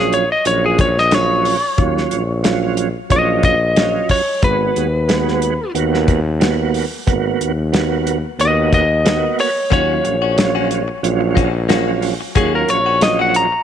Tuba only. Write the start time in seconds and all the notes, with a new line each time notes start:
Already playing: A#1
0.46 A#1
1.78 D#2
2.11 A#1
3.11 A#1
4.43 G#1
4.76 D#2
5.75 D#2
7.07 G#1
7.41 D#2
8.39 D#2
9.72 D#2
10.05 A#1
11.03 A#1
12.36 D#2
12.68 A#1